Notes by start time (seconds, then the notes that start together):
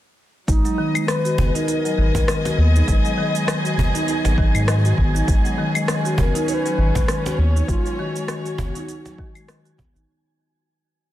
0.48 G#1 F#3 G#3 D#4 G#5, kick, open hi-hat, shaker
0.65 F#3 B3, cajon slap, open hi-hat, shaker
0.75 D#3 D#5
0.95 G#3, open hi-hat, claves, shaker
1.08 D#3 B4, cross-stick, open hi-hat, shaker
1.25 F#4 G#4, open hi-hat, shaker
1.38 F#1 B3, cajon bass
1.54 D#4 A#4, open hi-hat, shaker
1.68 D#4, open hi-hat, shaker
1.85 F#3, open hi-hat, shaker
1.98 G#1 D#3
2.15 G#3, cajon bass, kick, open hi-hat, shaker
2.28 D#3, cross-stick, open hi-hat, shaker
2.45 F#4, cajon slap, open hi-hat, shaker
2.58 D#2 B3 G#4
2.75 D#4, shaker
2.88 G#1 G#3, kick, open hi-hat, shaker
3.05 F#3, open hi-hat, shaker
3.18 D#3
3.35 G#3, open hi-hat, shaker
3.48 D#3, cross-stick, open hi-hat, shaker
3.65 F#4, open hi-hat, shaker
3.78 F#1 B3, cajon bass
3.95 D#4, open hi-hat, shaker
4.08 D#4, open hi-hat, shaker
4.25 G#1 F#3, cajon slap, open hi-hat, shaker
4.38 G#1 D#3, kick
4.55 G#2 G#3, open hi-hat, claves, shaker
4.68 D#3, cross-stick, open hi-hat, shaker
4.85 F#4, open hi-hat, shaker
4.98 G#1 B3, kick
5.15 D#4, cajon slap, shaker
5.28 G#1 G#3, kick, open hi-hat, shaker
5.45 F#3, cajon slap, open hi-hat, shaker
5.53 C#4
5.58 D#3
5.75 G#3, open hi-hat, claves, shaker
5.88 D#3, cross-stick, open hi-hat, shaker
6.05 F#4, open hi-hat, shaker
6.18 F#1 B3 A#4, cajon bass
6.35 D#4, open hi-hat, shaker
6.48 D#4 C#5, open hi-hat, shaker
6.53 B4
6.65 F#3, open hi-hat, shaker
6.78 G#1 D#3
6.95 G#3, kick, cajon bass, open hi-hat, shaker
7.08 D#3, cross-stick, open hi-hat, shaker
7.26 F#4, cajon slap, open hi-hat, shaker
7.38 D#2 B3 C#5
7.56 D#4, shaker
7.68 G#1 G#3 F4, kick, open hi-hat, shaker
7.86 F#3, open hi-hat, shaker
7.99 D#3 F#4
8.16 G#3, open hi-hat, shaker
8.28 D#3, cross-stick, open hi-hat, shaker
8.45 F#4, open hi-hat, shaker
8.58 F#1 B3, cajon bass
8.75 D#4, open hi-hat, shaker
8.88 D#4, open hi-hat, shaker
9.05 F#3, cajon slap, open hi-hat, shaker
9.18 D#3, kick
9.35 G#3, open hi-hat, claves, shaker
9.48 D#3, cross-stick, open hi-hat, shaker
9.65 F#4, open hi-hat, shaker
9.78 B3, kick, cajon bass
9.95 G#1 D#4, cajon slap, shaker